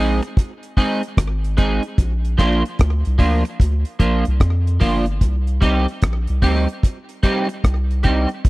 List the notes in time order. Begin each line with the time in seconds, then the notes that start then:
Already playing: A#1 G#3 C4 D#4 G#4
0.23 muted clean electric guitar stroke, closed hi-hat
0.37 kick, closed hi-hat
0.63 closed hi-hat
0.77 G#3 C4 D#4 G#4, kick, open hi-hat
1.03 closed hi-hat
1.17 G#1, kick, cross-stick, closed hi-hat
1.44 closed hi-hat
1.57 G#3 C4 D#4 G#4, kick, closed hi-hat
1.83 closed hi-hat
1.98 A#1, kick, closed hi-hat
2.25 closed hi-hat
2.38 A#1 F3 A#3 D4 F4, kick, cross-stick, closed hi-hat
2.65 closed hi-hat
2.79 D2, kick, cross-stick, closed hi-hat
3.05 C2, closed hi-hat
3.18 D2 F3 A#3 D4 F4, kick, open hi-hat
3.45 muted clean electric guitar stroke, closed hi-hat
3.60 D2, kick, closed hi-hat
3.85 closed hi-hat
3.99 A#1 F3 A#3 D4 F4, kick, closed hi-hat
4.25 C2, closed hi-hat
4.40 F2, kick, cross-stick, closed hi-hat
4.67 closed hi-hat
4.80 G1 F3 A#3 D4 F4, kick, open hi-hat
5.06 closed hi-hat
5.21 C2, kick, closed hi-hat
5.47 closed hi-hat
5.61 C2 G3 C4 D#4 G4, kick, closed hi-hat
5.88 closed hi-hat
6.02 A#1, kick, cross-stick, closed hi-hat
6.27 C2, closed hi-hat
6.42 D2 G3 C4 D#4 G4, kick, open hi-hat
6.68 closed hi-hat
6.83 kick, closed hi-hat
7.09 closed hi-hat
7.23 G3 C4 D#4 G4, kick, closed hi-hat
7.49 muted clean electric guitar stroke, closed hi-hat
7.64 C2, kick, cross-stick, closed hi-hat
7.91 closed hi-hat
8.03 G3 C4 D#4 G4, kick, closed hi-hat
8.29 closed hi-hat
8.45 F1, kick, closed hi-hat